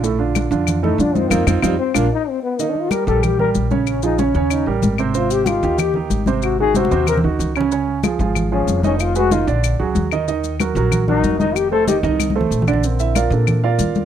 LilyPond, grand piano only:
<<
  \new Staff \with { instrumentName = "Grand piano" } { \time 4/4 \key bes \major \tempo 4 = 188 <a, a a'>8 <d d' f'>4 <d d' f'>4 <a, a a'>8 <d d' f'>8 <ees ees' f'>8 | <c' ees' f'>8 <c' ees' f'>8 <c' ees' f'>8 r8 <bes d' f'>8 r4. | <ees ees' ees''>4 <g g' bes'>8 <g g' bes'>4 <g g' bes'>4 <des des' des''>8~ | <des des' des''>8 <f f' aes'>8 <des des' des''>8 <des des' des''>4 <g g' bes'>4 <c c' c''>8 |
<c c' c''>4 <ees ees' g'>8 <ees ees' g'>4 <ees ees' g'>4 <c c' c''>8~ | <c c' c''>8 <ees ees' ges'>8 <c c' c''>8 <c c' c''>4 <ees ees' ges'>4 <des des' des''>8 | <des des' des''>4 <f f' aes'>8 <f f' aes'>4 <f f' aes'>4 <ees ees' ees''>8~ | <ees ees' ees''>8 <aes aes' ces''>8 <ees ees' ees''>8 <d d' d''>4 <fis fis' aes'>4 <ees ees' ees''>8 |
<ees ees' ees''>4 <ges ges' bes'>8 <ges ges' bes'>4 <ges ges' bes'>4 <ees ees' ees''>8~ | <ees ees' ees''>8 <a a' c''>8 <ees ees' ees''>8 <ees ees' ees''>4 <a a' c''>4 <d d' d''>8 | r8 <e' e''>8 <f' bes' d'' f''>8 <d' a' bes' d''>4 <f' bes' d'' f''>4. | }
  \new Staff \with { instrumentName = "Grand piano" } { \time 4/4 \key bes \major r1 | r1 | r1 | r1 |
r1 | r1 | r1 | r1 |
r1 | r1 | <d bes c'>1 | }
>>